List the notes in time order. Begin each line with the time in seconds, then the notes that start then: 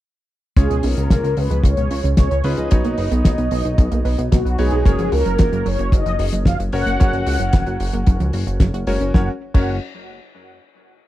0.57 C#2 C#3 C#4 F4 G#4 C#5, kick, closed hi-hat
0.70 C#2 B2, closed hi-hat
0.83 B1 C#4 A#4, open hi-hat
0.97 C#2 C#3, closed hi-hat
1.10 C#2 B2 A#4, kick, snare, closed hi-hat
1.24 C#2 C#3, closed hi-hat
1.37 C#2 C#3 B4, open hi-hat
1.51 C#2 F3, closed hi-hat
1.63 C#2 C#3 C#5, kick, closed hi-hat
1.77 C#2 B2, closed hi-hat
1.91 C#2 C#4, open hi-hat
2.04 C#2 C#3, closed hi-hat
2.17 C#2 B2 C#5, kick, snare, closed hi-hat
2.31 C#2 C#3, closed hi-hat
2.44 C#2 C#3 C#4 F4 G#4 B4 D#5, open hi-hat
2.57 C#2 F3, closed hi-hat
2.71 B1 B3 D#4 F#4 B4 C#5, kick, closed hi-hat
2.84 B1 A#3, closed hi-hat
2.98 F#1 B4, open hi-hat
3.11 B1 B3, closed hi-hat
3.25 B1 A#3, kick, snare, closed hi-hat
3.38 B1 B3, closed hi-hat
3.51 B1 B3, open hi-hat
3.65 B1 D#4, closed hi-hat
3.78 B1 B3, kick, closed hi-hat
3.92 B1 A#3, closed hi-hat
4.05 B1 B4, open hi-hat
4.18 B1 B3, closed hi-hat
4.32 B1 A#3 F#4, kick, snare, closed hi-hat
4.45 B1 B3, closed hi-hat
4.58 B1 B3 D#4 F#4 G#4 B4 C#5, open hi-hat
4.71 B1 D#4, closed hi-hat
4.85 F#1 F#3 C#4 F#4 G#4 A#4 C#5, kick, closed hi-hat
4.99 F#1 F3, closed hi-hat
5.12 C#2 F#4 A#4, open hi-hat
5.26 F#1 F#3, closed hi-hat
5.38 F#1 F3 A#4, kick, snare, closed hi-hat
5.52 F#1 F#3, closed hi-hat
5.66 F#1 F#3 C#5, open hi-hat
5.79 F#1 A#3, closed hi-hat
5.92 F#1 F#3 D#5, kick, closed hi-hat
6.06 F#1 F3, closed hi-hat
6.19 F#1 F#4, open hi-hat
6.33 F#1 F#3, closed hi-hat
6.45 F#1 F3 F5, kick, snare, closed hi-hat
6.59 F#1 F#3, closed hi-hat
6.72 F#1 F#3 C#4 F#4 A#4 C#5 F#5, open hi-hat
6.86 F#1 A#3, closed hi-hat
7.00 F#1 F#3 C#4 F#4 A#4 C#5, kick, closed hi-hat
7.13 F#1 F3, closed hi-hat
7.26 C#2 F#4, open hi-hat
7.40 F#1 F#3, closed hi-hat
7.53 F#1 F3, kick, snare, closed hi-hat
7.67 F#1 F#3, closed hi-hat
7.80 F#1 F#3, open hi-hat
7.93 F#1 A#3, closed hi-hat
8.07 F#1 F#3, kick, closed hi-hat
8.20 C#2 F3, closed hi-hat
8.33 F#1 F#4, open hi-hat
8.47 F#1 F#4, closed hi-hat
8.60 F#1 F#3, kick, snare, closed hi-hat
8.74 F#1 F#4, closed hi-hat
8.87 F#1 G#3 C#4 F#4 A#4 C#5, open hi-hat
9.01 F#1 C#4, closed hi-hat
9.14 F#1 F#3 C#4 F#4 A#4 C#5 F#5, kick, snare
9.54 F#1 F#3 C#4 F#4 A#4 C#5 F#5, kick, crash